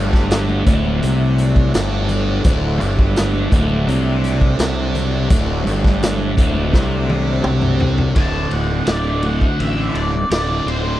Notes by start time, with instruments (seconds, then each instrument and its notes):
Already playing: fingered electric bass G1, harmonium D2 A2, distorted electric guitar G2, transistor combo organ F#3 A3 D4
0.13 kick, snare
0.31 snare, closed hi-hat
0.49 high conga
0.66 fingered electric bass D1, distorted electric guitar D2, kick, closed hi-hat, low conga
0.85 high conga
1.02 fingered electric bass C2, distorted electric guitar C3, closed hi-hat, high conga
1.38 closed hi-hat
1.56 kick
1.74 fingered electric bass G1, distorted electric guitar G2, snare, closed hi-hat
2.09 closed hi-hat, low conga
2.44 fingered electric bass D1, distorted electric guitar D2, kick, closed hi-hat, low conga
2.80 fingered electric bass G1, distorted electric guitar G2, closed hi-hat, low conga
2.99 kick
3.16 snare, closed hi-hat
3.34 high conga
3.52 fingered electric bass D1, distorted electric guitar D2, kick, closed hi-hat, low conga
3.70 high conga
3.87 fingered electric bass C2, distorted electric guitar C3, closed hi-hat, high conga
4.24 closed hi-hat
4.41 kick
4.58 fingered electric bass C2, distorted electric guitar C3, snare, closed hi-hat
4.94 closed hi-hat, low conga
5.30 fingered electric bass D1, distorted electric guitar D2, kick, closed hi-hat, low conga
5.65 fingered electric bass G1, distorted electric guitar G2, closed hi-hat, low conga
5.84 kick, snare
6.02 snare, closed hi-hat
6.18 high conga
6.37 fingered electric bass D1, distorted electric guitar D2, kick, closed hi-hat, low conga
6.55 high conga
6.72 fingered electric bass C2, distorted electric guitar C3, kick, snare
7.10 high tom
7.44 fingered electric bass C2, distorted electric guitar C3, mid tom
7.62 mid tom, high conga
7.79 floor tom, low conga
7.98 floor tom
8.15 fingered electric bass D1, distorted electric guitar D2 A2 D3, transistor combo organ F#3 C4 D4, lead electric guitar A5, kick, ride
8.51 fingered electric bass D1, lead electric guitar F#5, ride
8.69 distorted electric guitar A2 D3
8.86 fingered electric bass D1, distorted electric guitar D2 A2 D3, lead electric guitar D5, snare, ride
9.22 distorted electric guitar D2 A2 D3, lead electric guitar F#5, ride
9.41 muted distorted electric guitar stroke, kick
9.60 fingered electric bass A1, lead electric guitar E5, ride
9.76 distorted electric guitar A2 D3
9.94 fingered electric bass D1, lead electric guitar D5, ride
10.13 muted distorted electric guitar stroke
10.30 fingered electric bass D1, distorted electric guitar D2 A2 D3, lead electric guitar D5, snare, ride
10.49 distorted electric guitar A2 D3
10.66 fingered electric bass D1, distorted electric guitar D2 A2 D3, lead electric guitar C5, ride
10.84 distorted electric guitar A2 D3